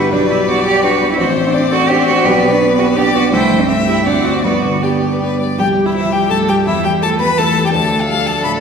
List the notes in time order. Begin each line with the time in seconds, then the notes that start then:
Already playing: G2 D3 G3 B3 D4 E4 G4 B4
0.12 B1 D4 B4 D5
0.30 B2 E4
0.48 B3 F#4 D5
0.66 G4
0.83 D4 F#4 B4
1.01 B3
1.12 E4
1.18 A1 C4 F#4 C5 D5
1.36 A2
1.47 D4
1.54 C4 D4 D5
1.71 F#4 A4
1.89 D4 G4 C5
2.07 C4 F#4
2.24 B1 B3 G4 B4
2.43 B2
2.52 D4
2.61 B3 D4
2.79 F#4 G4
2.96 D4 G4 D5
3.15 B3 F#4
3.33 C2 A3 E4 C5 G5
3.51 G2
3.60 C4
3.69 A3 C4 E5 G5
3.87 E4 G4
4.06 D2 C4 D4 D5 F#5
4.25 C4 F#4
4.44 G2 B3 F#4 B4 D5
4.64 D3
4.82 G3 B3 G4 D5
5.02 D4
5.12 B4
5.21 B3 B4
5.40 G3 D5
5.58 C2 G3 G4 G5
5.77 G3
5.85 E3 E4 E5
5.94 E3 F3 E4 E5
6.12 G3 G4 G5
6.30 G2 A3 A4 A5
6.48 G3 G4 G5
6.66 E2 E3 E4 E5
6.84 G3 G4 G5
7.02 F3 A3 A4 A5
7.20 G3 B3 B4 B5
7.38 E3 A3 A4 A5
7.57 G3
7.65 G3 G4 G5
7.73 D2 F3 D4 A4 A5
7.92 A3
8.01 F5
8.08 G3 F5
8.27 A3 A5
8.44 A2 B5